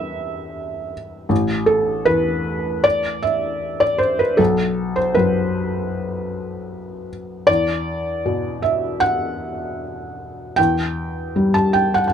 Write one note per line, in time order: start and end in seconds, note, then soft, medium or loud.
0.00 1.27 E2 medium
0.00 1.31 G3 soft
0.00 1.33 B4 medium
0.00 0.91 E5 medium
1.29 4.34 A1 medium
1.66 2.06 A4 medium
2.05 4.39 E2 soft
2.05 2.83 B4 medium
2.84 3.23 D5 medium
3.23 3.81 E5 medium
3.80 4.00 D5 medium
3.98 4.19 C5 medium
4.19 4.39 B4 medium
4.37 7.43 B1 medium
4.37 4.96 A4 medium
4.96 5.16 C5 medium
5.15 7.48 F#2 soft
5.15 7.08 B4 medium
7.47 10.54 E2 medium
7.47 8.63 D5 medium
8.26 11.99 B2 soft
8.62 9.01 E5 medium
9.00 10.57 F#5 medium
10.56 12.13 E2 soft
10.56 11.55 G5 medium
11.36 12.13 G3 soft
11.54 11.74 A5 medium
11.73 11.94 G5 medium
11.94 12.06 F#5 medium
12.08 12.13 F#5 medium